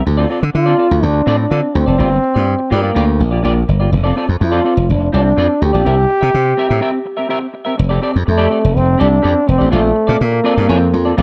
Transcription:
0.06 slap bass D2, muted clean electric guitar stroke
0.17 clean electric guitar C4 F4 A4 D5
0.29 clean electric guitar C4 F4 A4 D5
0.42 slap bass D3, muted clean electric guitar stroke
0.54 slap bass D3, trombone F4, muted clean electric guitar stroke
0.66 clean electric guitar C4 F4 A4 D5
0.77 clean electric guitar C4 F4 A4 D5
0.90 slap bass D2, muted clean electric guitar stroke
1.03 slap bass D2, trombone D4
1.14 muted clean electric guitar stroke
1.26 slap bass A2, clean electric guitar C4 F4 A4 D5
1.38 trombone D4, muted clean electric guitar stroke
1.50 slap bass D3, clean electric guitar C4 F4 A4 D5
1.63 muted clean electric guitar stroke
1.75 slap bass D2, trombone C4, muted clean electric guitar stroke
1.86 slap bass F1, clean electric guitar C4 F4 A4 D5
1.98 slap bass G1, clean electric guitar A#3 F4 G4 D5
2.11 muted clean electric guitar stroke
2.22 muted clean electric guitar stroke
2.34 slap bass G2, clean electric guitar A#3 F4 G4 D5
2.47 muted clean electric guitar stroke
2.59 muted clean electric guitar stroke
2.70 slap bass G2, clean electric guitar A#3 F4 G4 D5, trombone A#3
2.83 clean electric guitar A#3 F4 G4 D5
2.95 slap bass D2, clean electric guitar A#3 F4 G4 D5
3.07 muted clean electric guitar stroke
3.19 slap bass A#1, muted clean electric guitar stroke
3.31 clean electric guitar A#3 F4 G4 D5
3.43 slap bass A#1, clean electric guitar A#3 F4 G4 D5
3.56 muted clean electric guitar stroke
3.68 slap bass G1, muted clean electric guitar stroke
3.80 clean electric guitar A#3 F4 G4 D5
3.92 slap bass F1, muted clean electric guitar stroke
4.04 clean electric guitar C4 F4 A4 D5
4.16 clean electric guitar C4 F4 A4 D5
4.28 slap bass F2, muted clean electric guitar stroke
4.40 slap bass F2, trombone F4, muted clean electric guitar stroke
4.52 clean electric guitar C4 F4 A4 D5
4.64 clean electric guitar C4 F4 A4 D5
4.76 slap bass F1, muted clean electric guitar stroke
4.89 slap bass F1, trombone D4
5.01 muted clean electric guitar stroke
5.13 slap bass C2, clean electric guitar C4 F4 A4 D5, trombone D4
5.25 muted clean electric guitar stroke
5.36 slap bass F2, clean electric guitar C4 F4 A4 D5
5.49 muted clean electric guitar stroke
5.61 slap bass D2, trombone G4, muted clean electric guitar stroke
5.73 slap bass A#1, clean electric guitar C4 F4 A4 D5
5.85 slap bass C2, clean electric guitar C4 G4 A#4 E5
5.97 muted clean electric guitar stroke
6.09 muted clean electric guitar stroke
6.21 slap bass C3, clean electric guitar C4 G4 A#4 E5
6.33 slap bass C3, muted clean electric guitar stroke
6.45 muted clean electric guitar stroke
6.57 clean electric guitar C4 G4 A#4 E5
6.69 slap bass A2, clean electric guitar C4 G4 A#4 E5
6.80 clean electric guitar C4 G4 A#4 E5
6.93 muted clean electric guitar stroke
7.05 muted clean electric guitar stroke
7.17 clean electric guitar C4 G4 A#4 E5
7.29 clean electric guitar C4 G4 A#4 E5
7.41 muted clean electric guitar stroke
7.53 muted clean electric guitar stroke
7.65 clean electric guitar C4 G4 A#4 E5
7.77 slap bass F1, muted clean electric guitar stroke
7.89 clean electric guitar C4 G4 A4 D5
8.02 clean electric guitar C4 G4 A4 D5
8.14 slap bass F2, muted clean electric guitar stroke
8.26 slap bass F2, trombone A3, muted clean electric guitar stroke
8.38 clean electric guitar C4 G4 A4 D5
8.50 clean electric guitar C4 G4 A4 D5
8.61 slap bass F1, muted clean electric guitar stroke
8.76 slap bass F1, trombone C4
8.86 muted clean electric guitar stroke
8.98 slap bass C2, clean electric guitar C4 G4 A4 D5, trombone D4
9.10 muted clean electric guitar stroke
9.22 slap bass F2, clean electric guitar C4 G4 A4 D5
9.34 muted clean electric guitar stroke
9.46 slap bass F1, trombone C4, muted clean electric guitar stroke
9.58 slap bass A1, clean electric guitar C4 G4 A4 D5
9.71 slap bass A#1, trombone A3, clean electric guitar C4 F4 A4 D5
9.82 muted clean electric guitar stroke
9.95 muted clean electric guitar stroke
10.07 slap bass A#2, clean electric guitar C4 F4 A4 D5
10.20 slap bass A#2, trombone A#3, muted clean electric guitar stroke
10.32 muted clean electric guitar stroke
10.44 clean electric guitar C4 F4 A4 D5
10.56 slap bass G2, clean electric guitar C4 F4 A4 D5
10.68 slap bass F2, clean electric guitar C4 F4 A4 D5
10.80 muted clean electric guitar stroke
10.93 slap bass F2, muted clean electric guitar stroke
11.05 clean electric guitar C4 F4 A4 D5
11.17 slap bass A#1, clean electric guitar C4 F4 A4 D5

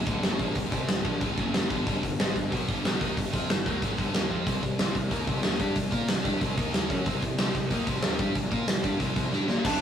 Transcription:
0.06 picked electric bass D1, distorted electric guitar D2 A2 D3, kick, open hi-hat
0.22 picked electric bass F#1, distorted electric guitar F#2 C#3 F#3, snare, open hi-hat
0.39 picked electric bass A#1, distorted electric guitar A#2 F3 A#3, kick, open hi-hat
0.55 picked electric bass D1, distorted electric guitar D2 A2, kick, open hi-hat
0.72 picked electric bass C2, distorted electric guitar C3 G3 C4, kick, open hi-hat
0.88 picked electric bass D1, distorted electric guitar D2 A2, snare, open hi-hat
1.04 picked electric bass A#1, distorted electric guitar A#2 F3 A#3, kick, open hi-hat
1.21 picked electric bass D1, distorted electric guitar D2 A2 D3, kick, open hi-hat
1.37 picked electric bass F#1, distorted electric guitar F#2 C#3 F#3, kick, open hi-hat
1.54 snare, open hi-hat
1.70 picked electric bass G1, distorted electric guitar G2 D3 G3, kick, open hi-hat
1.87 picked electric bass G1, distorted electric guitar G2 D3 G3, kick, open hi-hat
2.03 picked electric bass G1, distorted electric guitar G2 D3, kick, open hi-hat
2.19 picked electric bass G#1, distorted electric guitar G#2 D#3 G#3, snare, open hi-hat
2.35 picked electric bass G1, distorted electric guitar G2 D3, kick, open hi-hat
2.52 picked electric bass B1, distorted electric guitar B2 F#3 B3, kick, open hi-hat
2.68 picked electric bass G1, distorted electric guitar G2 D3 G3, kick, open hi-hat
2.85 picked electric bass B1, distorted electric guitar B2 F#3 B3, snare, open hi-hat
3.01 picked electric bass D#2, distorted electric guitar D#3 A#3 D#4, kick, open hi-hat
3.17 picked electric bass G1, distorted electric guitar G2 D3, kick, open hi-hat
3.33 picked electric bass F2, distorted electric guitar F3 C4 F4, kick, open hi-hat
3.48 picked electric bass G1, distorted electric guitar G2 D3, snare, open hi-hat
3.66 picked electric bass D#2, distorted electric guitar D#3 A#3 D#4, kick, open hi-hat
3.82 picked electric bass G#1, distorted electric guitar G#2 D#3 G#3, kick, open hi-hat
3.98 picked electric bass G1, distorted electric guitar G2 D3 G3, kick, open hi-hat
4.14 picked electric bass D#2, distorted electric guitar D#3 A#3 D#4, snare, open hi-hat
4.29 picked electric bass F2, distorted electric guitar F3 C4 F4, kick
4.46 picked electric bass C2, distorted electric guitar C3 G3 C4, kick, open hi-hat
4.63 picked electric bass C2, distorted electric guitar C3 G3, kick, open hi-hat
4.78 picked electric bass C2, distorted electric guitar C3 G3 C4, snare, open hi-hat
4.95 picked electric bass C2, distorted electric guitar C3 G3, kick, open hi-hat
5.11 picked electric bass D#2, distorted electric guitar D#3 A#3 D#4, kick, open hi-hat
5.27 picked electric bass C2, distorted electric guitar C3 G3 C4, kick, open hi-hat
5.36 snare
5.43 picked electric bass D#2, distorted electric guitar D#3 A#3 D#4, snare, open hi-hat
5.59 picked electric bass G2, distorted electric guitar G3 D4 G4, kick, open hi-hat
5.74 picked electric bass C2, distorted electric guitar C3 G3, kick, open hi-hat
5.91 picked electric bass A#2, distorted electric guitar A#3 F4 A#4, kick, open hi-hat
6.07 picked electric bass C2, distorted electric guitar C3 G3, snare, open hi-hat
6.25 picked electric bass G2, distorted electric guitar G3 D4 G4, kick, open hi-hat
6.41 picked electric bass C2, distorted electric guitar C3 G3 C4, kick, open hi-hat
6.57 picked electric bass D#2, distorted electric guitar D#3 A#3 D#4, kick, open hi-hat
6.74 snare, open hi-hat
6.90 picked electric bass F#2, distorted electric guitar F#3 C#4 F#4, kick, open hi-hat
7.06 picked electric bass C2, distorted electric guitar C3 G3 C4, kick, open hi-hat
7.22 picked electric bass C2, distorted electric guitar C3 G3, kick, open hi-hat
7.38 picked electric bass C2, distorted electric guitar C3 G3 C4, snare, open hi-hat
7.54 picked electric bass C2, distorted electric guitar C3 G3, kick, open hi-hat
7.70 picked electric bass D#2, distorted electric guitar D#3 A#3 D#4, kick, open hi-hat
7.87 picked electric bass C2, distorted electric guitar C3 G3 C4, kick, open hi-hat
7.95 snare
8.02 picked electric bass D#2, distorted electric guitar D#3 A#3 D#4, snare, open hi-hat
8.19 picked electric bass G2, distorted electric guitar G3 D4 G4, kick, open hi-hat
8.35 picked electric bass C2, distorted electric guitar C3 G3, kick, open hi-hat
8.51 picked electric bass A#2, distorted electric guitar A#3 F4 A#4, kick, open hi-hat
8.67 picked electric bass C2, distorted electric guitar C3 G3, snare, open hi-hat
8.83 picked electric bass G2, distorted electric guitar G3 D4 G4, kick, open hi-hat
9.00 picked electric bass C2, distorted electric guitar C3 G3 C4, kick, open hi-hat
9.16 picked electric bass C2, distorted electric guitar C3 G3 C4, kick, open hi-hat
9.24 snare
9.32 picked electric bass G2, distorted electric guitar G3 D4 G4, snare
9.48 picked electric bass A#2, distorted electric guitar A#3 F4 A#4, snare
9.63 picked electric bass D1, distorted electric guitar D2 A2 D3, lead electric guitar D4 A5, kick, crash

